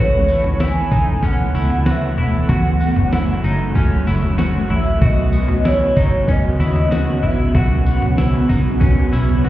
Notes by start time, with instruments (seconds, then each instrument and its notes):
Already playing: fingered electric bass A1, ambient pad C#3, overdriven electric guitar A3 B3 E4, clean electric guitar F#4
0.00 ambient pad E3 A3 B3, overdriven electric guitar A4 C#5, soft synth lead C#5
0.27 overdriven electric guitar A4 C#5, tambourine
0.32 overdriven electric guitar E4
0.44 floor tom
0.59 overdriven electric guitar B3 E4 A4, clean electric guitar E4, soft synth lead G#5, snare, tambourine
0.64 overdriven electric guitar C#5
0.91 fingered electric bass E1, clean electric guitar D#4, overdriven electric guitar A4 C#5, kick, tambourine
0.95 overdriven electric guitar E4
1.23 overdriven electric guitar A3 B3 E4 A4 C#5, clean electric guitar C#4, soft synth lead F#5, kick, floor tom, tambourine
1.54 fingered electric bass C#2, clean electric guitar E4, overdriven electric guitar A4 C#5, tambourine
1.59 overdriven electric guitar E4
1.70 floor tom
1.86 overdriven electric guitar B3 E4 A4, clean electric guitar F#4, snare, tambourine
1.90 overdriven electric guitar C#5, soft synth lead E5
2.17 fingered electric bass E1, clean electric guitar E4, overdriven electric guitar A4 C#5, floor tom
2.22 overdriven electric guitar E4, soft synth lead F#5
2.49 fingered electric bass F#1, overdriven electric guitar F#3 A3 C#4 F#4, ambient pad F#3 A3 F#4, clean electric guitar F#4, kick, floor tom, tambourine
2.80 overdriven electric guitar C#4 F#4, tambourine
2.85 overdriven electric guitar A3
2.96 fingered electric bass F#1, floor tom
3.11 overdriven electric guitar F#3 A3 C#4, clean electric guitar E4, snare, tambourine
3.16 overdriven electric guitar F#4
3.43 fingered electric bass F#1, overdriven electric guitar C#4 F#4, clean electric guitar D#4, tambourine
3.48 overdriven electric guitar A3
3.75 overdriven electric guitar F#3 A3 C#4 F#4, clean electric guitar C#4, kick, floor tom, tambourine
4.06 fingered electric bass F#1, overdriven electric guitar C#4 F#4, clean electric guitar E4, tambourine
4.11 overdriven electric guitar A3
4.23 floor tom
4.37 overdriven electric guitar F#3 A3 C#4, clean electric guitar F#4, snare, tambourine
4.42 overdriven electric guitar F#4
4.70 fingered electric bass A1, overdriven electric guitar C#4 F#4, clean electric guitar E4, floor tom
4.74 overdriven electric guitar A3, soft synth lead E5
5.01 fingered electric bass B1, overdriven electric guitar B2 D#3 B3 C#4 F#4, ambient pad C#3 B3 C#4, clean electric guitar F#4, soft synth lead D#5, kick, floor tom, tambourine
5.33 overdriven electric guitar C#4 F#4, tambourine
5.37 overdriven electric guitar B3
5.48 floor tom
5.65 overdriven electric guitar B3 C#4 F#4, clean electric guitar E4, soft synth lead C#5, snare, tambourine
5.96 fingered electric bass F#1, overdriven electric guitar C#4 F#4, clean electric guitar D#4, kick, tambourine
6.00 overdriven electric guitar B3
6.28 overdriven electric guitar B2 D#3 B3 C#4 F#4, clean electric guitar C#4, soft synth lead D#5, kick, floor tom, tambourine
6.58 fingered electric bass D#2, overdriven electric guitar C#4 F#4, clean electric guitar E4, tambourine
6.63 overdriven electric guitar B3
6.76 floor tom
6.91 overdriven electric guitar D#3 B3 C#4, clean electric guitar F#4, snare, tambourine
6.95 overdriven electric guitar F#4
7.22 fingered electric bass A1, overdriven electric guitar C#4 F#4, clean electric guitar E4, soft synth lead E5, floor tom
7.26 overdriven electric guitar B3
7.54 fingered electric bass B1, overdriven electric guitar B2 D#3 B3 C#4 F#4, clean electric guitar F#4, soft synth lead F#5, kick, floor tom, tambourine
7.85 overdriven electric guitar C#4 F#4, tambourine
7.89 overdriven electric guitar B3
8.02 fingered electric bass B1, floor tom
8.18 overdriven electric guitar B3 C#4 F#4, clean electric guitar E4, snare, tambourine
8.48 fingered electric bass B1, overdriven electric guitar C#4 F#4, clean electric guitar D#4, kick, tambourine
8.53 overdriven electric guitar B3
8.80 overdriven electric guitar B2 D#3 B3 C#4 F#4, clean electric guitar C#4, kick, floor tom, tambourine
9.11 fingered electric bass B1, overdriven electric guitar C#4 F#4, clean electric guitar E4, tambourine
9.16 overdriven electric guitar B3
9.29 floor tom
9.43 overdriven electric guitar D#3 B3, clean electric guitar F#4, high tom